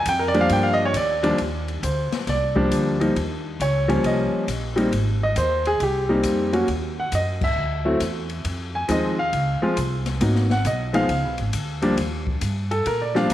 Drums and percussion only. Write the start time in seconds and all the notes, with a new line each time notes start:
0.05 kick, hi-hat pedal, ride
0.34 ride
0.49 kick, ride
0.94 kick, hi-hat pedal, ride
1.24 ride
1.38 kick, ride
1.68 ride
1.83 kick, hi-hat pedal, ride
2.12 snare, ride
2.27 kick, snare, ride
2.56 kick
2.71 kick, hi-hat pedal, ride
3.01 ride
3.16 kick, ride
3.60 kick, hi-hat pedal, ride
3.89 ride
4.04 kick, ride
4.48 kick, hi-hat pedal, ride
4.78 ride
4.92 kick, ride
5.36 kick, hi-hat pedal, ride
5.65 ride
5.80 kick, ride
6.23 kick, hi-hat pedal, ride
6.53 ride
6.68 kick, ride
7.12 kick, hi-hat pedal, ride
7.41 kick, crash
8.00 kick, hi-hat pedal, ride
8.29 ride
8.45 kick, ride
8.89 kick, hi-hat pedal, ride
9.33 kick, ride
9.77 kick, hi-hat pedal, ride
10.06 snare, ride
10.21 kick, ride
10.36 snare
10.50 snare
10.65 kick, hi-hat pedal, ride
10.94 ride
11.09 kick, ride
11.38 ride
11.53 kick, hi-hat pedal, ride
11.82 ride
11.97 kick, ride
12.27 kick
12.41 kick, hi-hat pedal, ride
12.71 ride
12.86 kick, ride
13.15 snare
13.30 kick, hi-hat pedal, ride